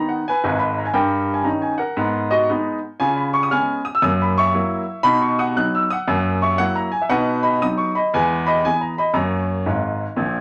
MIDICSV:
0, 0, Header, 1, 2, 480
1, 0, Start_track
1, 0, Key_signature, 5, "major"
1, 0, Tempo, 513259
1, 881, Time_signature, 4, 2, 24, 8
1, 9733, End_track
2, 0, Start_track
2, 0, Title_t, "Grand piano"
2, 0, Program_c, 0, 0
2, 0, Note_on_c, 0, 51, 46
2, 0, Note_on_c, 0, 59, 46
2, 0, Note_on_c, 0, 63, 46
2, 80, Note_on_c, 0, 78, 61
2, 192, Note_off_c, 0, 51, 0
2, 195, Note_off_c, 0, 63, 0
2, 196, Note_off_c, 0, 59, 0
2, 237, Note_off_c, 0, 78, 0
2, 260, Note_on_c, 0, 80, 83
2, 276, Note_on_c, 0, 71, 74
2, 410, Note_on_c, 0, 32, 91
2, 411, Note_on_c, 0, 44, 79
2, 553, Note_on_c, 0, 83, 77
2, 557, Note_off_c, 0, 71, 0
2, 571, Note_off_c, 0, 80, 0
2, 713, Note_off_c, 0, 83, 0
2, 737, Note_on_c, 0, 82, 56
2, 790, Note_off_c, 0, 32, 0
2, 791, Note_off_c, 0, 44, 0
2, 799, Note_on_c, 0, 80, 67
2, 809, Note_off_c, 0, 82, 0
2, 876, Note_on_c, 0, 43, 90
2, 876, Note_on_c, 0, 79, 87
2, 881, Note_off_c, 0, 80, 0
2, 886, Note_on_c, 0, 70, 69
2, 1040, Control_c, 0, 64, 127
2, 1252, Note_on_c, 0, 80, 62
2, 1254, Note_off_c, 0, 70, 0
2, 1276, Note_off_c, 0, 79, 0
2, 1286, Note_off_c, 0, 43, 0
2, 1341, Note_on_c, 0, 51, 51
2, 1347, Note_off_c, 0, 80, 0
2, 1348, Note_on_c, 0, 61, 45
2, 1348, Note_on_c, 0, 82, 62
2, 1355, Note_on_c, 0, 63, 60
2, 1373, Control_c, 0, 64, 0
2, 1512, Note_off_c, 0, 82, 0
2, 1514, Note_on_c, 0, 80, 62
2, 1610, Note_off_c, 0, 51, 0
2, 1616, Note_off_c, 0, 61, 0
2, 1621, Note_off_c, 0, 63, 0
2, 1663, Note_on_c, 0, 78, 76
2, 1674, Note_off_c, 0, 80, 0
2, 1678, Note_on_c, 0, 70, 65
2, 1839, Note_on_c, 0, 44, 91
2, 1860, Note_on_c, 0, 59, 56
2, 2003, Control_c, 0, 64, 127
2, 2119, Note_off_c, 0, 59, 0
2, 2124, Note_off_c, 0, 70, 0
2, 2150, Note_off_c, 0, 78, 0
2, 2157, Note_on_c, 0, 75, 88
2, 2165, Note_on_c, 0, 66, 70
2, 2248, Note_off_c, 0, 44, 0
2, 2315, Note_off_c, 0, 66, 0
2, 2322, Note_off_c, 0, 75, 0
2, 2333, Control_c, 0, 64, 0
2, 2333, Note_on_c, 0, 59, 66
2, 2334, Note_on_c, 0, 56, 61
2, 2336, Note_on_c, 0, 63, 69
2, 2594, Note_off_c, 0, 59, 0
2, 2595, Note_off_c, 0, 56, 0
2, 2596, Note_off_c, 0, 63, 0
2, 2802, Note_on_c, 0, 80, 94
2, 2807, Note_on_c, 0, 49, 82
2, 2816, Note_on_c, 0, 65, 67
2, 2959, Note_off_c, 0, 80, 0
2, 2963, Note_on_c, 0, 83, 65
2, 2980, Control_c, 0, 64, 127
2, 3076, Note_off_c, 0, 65, 0
2, 3119, Note_off_c, 0, 83, 0
2, 3119, Note_on_c, 0, 85, 85
2, 3200, Note_off_c, 0, 85, 0
2, 3208, Note_on_c, 0, 87, 86
2, 3213, Note_off_c, 0, 49, 0
2, 3283, Note_on_c, 0, 56, 52
2, 3284, Note_on_c, 0, 89, 88
2, 3286, Note_off_c, 0, 87, 0
2, 3289, Control_c, 0, 64, 0
2, 3290, Note_on_c, 0, 59, 48
2, 3290, Note_on_c, 0, 80, 81
2, 3291, Note_on_c, 0, 61, 53
2, 3547, Note_off_c, 0, 56, 0
2, 3552, Note_off_c, 0, 59, 0
2, 3553, Note_off_c, 0, 61, 0
2, 3579, Note_off_c, 0, 80, 0
2, 3598, Note_off_c, 0, 89, 0
2, 3599, Note_on_c, 0, 87, 97
2, 3680, Note_off_c, 0, 87, 0
2, 3691, Note_on_c, 0, 88, 80
2, 3761, Note_on_c, 0, 42, 96
2, 3762, Note_on_c, 0, 87, 92
2, 3768, Note_off_c, 0, 88, 0
2, 3791, Note_on_c, 0, 58, 66
2, 3919, Note_off_c, 0, 87, 0
2, 3945, Note_on_c, 0, 83, 72
2, 3972, Control_c, 0, 64, 127
2, 4047, Note_off_c, 0, 58, 0
2, 4090, Note_off_c, 0, 83, 0
2, 4093, Note_on_c, 0, 85, 98
2, 4110, Note_on_c, 0, 76, 81
2, 4169, Note_off_c, 0, 42, 0
2, 4245, Note_on_c, 0, 54, 64
2, 4249, Control_c, 0, 64, 0
2, 4254, Note_on_c, 0, 58, 64
2, 4254, Note_on_c, 0, 64, 74
2, 4508, Note_off_c, 0, 54, 0
2, 4514, Note_off_c, 0, 58, 0
2, 4514, Note_off_c, 0, 64, 0
2, 4701, Note_off_c, 0, 76, 0
2, 4707, Note_on_c, 0, 83, 127
2, 4712, Note_on_c, 0, 47, 96
2, 4728, Note_on_c, 0, 63, 69
2, 4730, Note_off_c, 0, 85, 0
2, 4872, Note_off_c, 0, 83, 0
2, 4876, Note_on_c, 0, 85, 69
2, 4921, Control_c, 0, 64, 127
2, 4990, Note_off_c, 0, 63, 0
2, 5035, Note_off_c, 0, 85, 0
2, 5040, Note_on_c, 0, 87, 82
2, 5044, Note_on_c, 0, 78, 82
2, 5124, Note_off_c, 0, 47, 0
2, 5194, Note_off_c, 0, 78, 0
2, 5203, Note_off_c, 0, 87, 0
2, 5207, Note_on_c, 0, 54, 53
2, 5207, Note_on_c, 0, 90, 94
2, 5208, Note_on_c, 0, 59, 47
2, 5209, Note_on_c, 0, 63, 55
2, 5210, Control_c, 0, 64, 0
2, 5362, Note_off_c, 0, 90, 0
2, 5376, Note_on_c, 0, 88, 70
2, 5470, Note_off_c, 0, 54, 0
2, 5470, Note_off_c, 0, 59, 0
2, 5471, Note_off_c, 0, 63, 0
2, 5522, Note_on_c, 0, 87, 101
2, 5525, Note_off_c, 0, 88, 0
2, 5542, Note_on_c, 0, 78, 72
2, 5682, Note_on_c, 0, 42, 101
2, 5704, Note_on_c, 0, 58, 55
2, 5858, Control_c, 0, 64, 127
2, 5962, Note_off_c, 0, 58, 0
2, 5977, Note_off_c, 0, 78, 0
2, 5999, Note_off_c, 0, 87, 0
2, 6005, Note_on_c, 0, 85, 77
2, 6012, Note_on_c, 0, 76, 68
2, 6090, Note_off_c, 0, 42, 0
2, 6156, Note_on_c, 0, 78, 108
2, 6158, Note_off_c, 0, 76, 0
2, 6164, Note_on_c, 0, 58, 62
2, 6166, Note_off_c, 0, 85, 0
2, 6166, Note_on_c, 0, 54, 60
2, 6170, Control_c, 0, 64, 0
2, 6173, Note_on_c, 0, 64, 71
2, 6316, Note_off_c, 0, 78, 0
2, 6319, Note_on_c, 0, 82, 82
2, 6427, Note_off_c, 0, 58, 0
2, 6429, Note_off_c, 0, 54, 0
2, 6434, Note_off_c, 0, 64, 0
2, 6468, Note_on_c, 0, 80, 76
2, 6476, Note_off_c, 0, 82, 0
2, 6554, Note_off_c, 0, 80, 0
2, 6561, Note_on_c, 0, 76, 70
2, 6635, Note_on_c, 0, 47, 93
2, 6635, Note_on_c, 0, 78, 95
2, 6642, Note_off_c, 0, 76, 0
2, 6642, Note_on_c, 0, 71, 79
2, 6650, Note_on_c, 0, 63, 66
2, 6805, Control_c, 0, 64, 127
2, 6911, Note_off_c, 0, 63, 0
2, 6935, Note_off_c, 0, 71, 0
2, 6947, Note_on_c, 0, 83, 84
2, 6953, Note_off_c, 0, 78, 0
2, 6955, Note_on_c, 0, 75, 61
2, 7046, Note_off_c, 0, 47, 0
2, 7109, Note_off_c, 0, 75, 0
2, 7116, Note_off_c, 0, 83, 0
2, 7125, Note_on_c, 0, 54, 48
2, 7127, Note_on_c, 0, 87, 100
2, 7129, Control_c, 0, 64, 0
2, 7129, Note_on_c, 0, 59, 50
2, 7134, Note_on_c, 0, 63, 58
2, 7272, Note_on_c, 0, 85, 65
2, 7281, Note_off_c, 0, 87, 0
2, 7387, Note_off_c, 0, 54, 0
2, 7390, Note_off_c, 0, 59, 0
2, 7394, Note_off_c, 0, 63, 0
2, 7433, Note_off_c, 0, 85, 0
2, 7437, Note_on_c, 0, 83, 75
2, 7449, Note_on_c, 0, 75, 61
2, 7596, Note_off_c, 0, 75, 0
2, 7601, Note_off_c, 0, 83, 0
2, 7610, Note_on_c, 0, 40, 98
2, 7613, Note_on_c, 0, 80, 95
2, 7618, Note_on_c, 0, 71, 67
2, 7633, Note_on_c, 0, 56, 56
2, 7788, Control_c, 0, 64, 127
2, 7888, Note_off_c, 0, 56, 0
2, 7903, Note_off_c, 0, 71, 0
2, 7915, Note_on_c, 0, 83, 85
2, 7922, Note_off_c, 0, 80, 0
2, 7928, Note_on_c, 0, 75, 76
2, 8013, Note_off_c, 0, 40, 0
2, 8075, Note_off_c, 0, 75, 0
2, 8080, Note_off_c, 0, 83, 0
2, 8089, Note_on_c, 0, 52, 46
2, 8089, Note_on_c, 0, 80, 99
2, 8090, Note_on_c, 0, 59, 54
2, 8094, Control_c, 0, 64, 0
2, 8097, Note_on_c, 0, 68, 56
2, 8241, Note_on_c, 0, 82, 64
2, 8242, Note_off_c, 0, 80, 0
2, 8351, Note_off_c, 0, 52, 0
2, 8351, Note_off_c, 0, 59, 0
2, 8356, Note_off_c, 0, 68, 0
2, 8397, Note_off_c, 0, 82, 0
2, 8401, Note_on_c, 0, 83, 80
2, 8411, Note_on_c, 0, 75, 60
2, 8544, Note_on_c, 0, 42, 86
2, 8547, Note_on_c, 0, 82, 81
2, 8556, Note_on_c, 0, 73, 61
2, 8557, Note_off_c, 0, 75, 0
2, 8563, Note_off_c, 0, 83, 0
2, 8563, Note_on_c, 0, 58, 52
2, 8740, Control_c, 0, 64, 127
2, 8826, Note_off_c, 0, 58, 0
2, 8959, Note_off_c, 0, 42, 0
2, 9034, Note_on_c, 0, 44, 73
2, 9036, Note_on_c, 0, 32, 70
2, 9052, Control_c, 0, 64, 0
2, 9395, Note_off_c, 0, 44, 0
2, 9397, Note_off_c, 0, 32, 0
2, 9505, Note_on_c, 0, 46, 77
2, 9513, Note_on_c, 0, 34, 72
2, 9733, Note_off_c, 0, 34, 0
2, 9733, Note_off_c, 0, 46, 0
2, 9733, Note_off_c, 0, 73, 0
2, 9733, Note_off_c, 0, 82, 0
2, 9733, End_track
0, 0, End_of_file